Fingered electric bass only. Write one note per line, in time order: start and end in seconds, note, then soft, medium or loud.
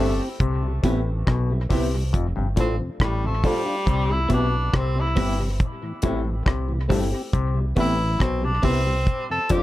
0.00 0.19 G1 medium
0.41 0.82 C2 loud
0.84 1.25 A1 medium
1.28 1.69 B1 loud
1.71 2.12 C2 medium
2.14 2.36 F1 medium
2.38 2.57 G1 medium
2.57 2.79 A1 medium
3.00 3.42 A1 medium
3.87 4.29 C2 loud
4.31 4.72 B1 medium
4.74 5.15 C2 loud
5.17 5.59 G1 medium
6.04 6.46 A1 medium
6.46 6.88 C2 medium
6.91 7.12 G1 medium
7.34 7.75 C2 loud
7.77 8.19 A1 loud
8.21 8.62 B1 medium
8.64 9.05 C2 medium
9.51 9.63 F1 medium